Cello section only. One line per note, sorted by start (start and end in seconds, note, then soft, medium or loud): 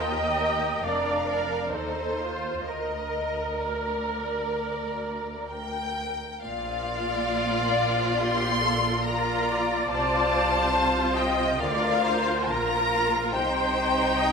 0.00 0.80 D#2 medium
0.83 1.70 F2 medium
1.71 2.65 D#2 medium
2.65 6.19 D2 medium
6.43 9.87 A#2 medium
9.92 11.56 C3 medium
11.60 12.49 D3 medium
12.50 13.34 A#2 medium
13.34 14.32 C3 medium